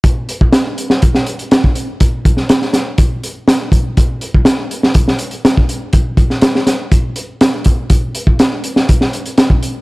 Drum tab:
HH |x-x-x-x-x-xxx-x-|x-x-x-x-x-x-x-x-|x-x-x-x-x-xxx-x-|x-x-x-x-x-x-x-x-|
SD |----o--o-o--o---|---oooo-----o---|----o--o-o--o---|---oooo-----o---|
BD |o--o----o----o--|o-o-----o-----o-|o--o----o----o--|o-o-----o-----o-|

HH |x-x-x-x-x-xxx-x-|
SD |----o--o-o--o---|
BD |o--o----o----o--|